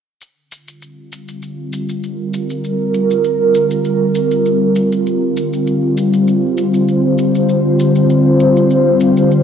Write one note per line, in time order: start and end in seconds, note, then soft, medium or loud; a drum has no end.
0.21 9.43 D3 medium
0.21 shaker soft
0.43 9.43 C4 medium
0.49 9.43 F4 medium
0.49 shaker medium
0.64 9.43 G3 medium
0.64 shaker soft
0.82 shaker soft
1.12 shaker medium
1.28 shaker soft
1.42 shaker soft
1.69 5.42 A#4 medium
1.69 shaker medium
1.89 shaker soft
2.04 shaker soft
2.34 shaker medium
2.50 shaker soft
2.64 shaker soft
2.94 shaker medium
3.11 shaker soft
3.24 shaker soft
3.55 shaker medium
3.71 shaker soft
3.85 shaker soft
4.15 shaker medium
4.31 shaker soft
4.46 shaker soft
4.76 shaker medium
4.92 shaker soft
5.07 shaker soft
5.23 9.43 C5 medium
5.37 shaker medium
5.53 shaker soft
5.67 shaker soft
5.97 shaker medium
6.13 shaker soft
6.28 shaker soft
6.58 shaker medium
6.74 shaker soft
6.88 shaker soft
7.18 shaker medium
7.35 shaker soft
7.49 shaker soft
7.79 shaker medium
7.95 shaker soft
8.10 shaker soft
8.40 shaker medium
8.57 shaker soft
8.70 shaker soft
9.01 shaker medium
9.17 shaker soft
9.31 shaker soft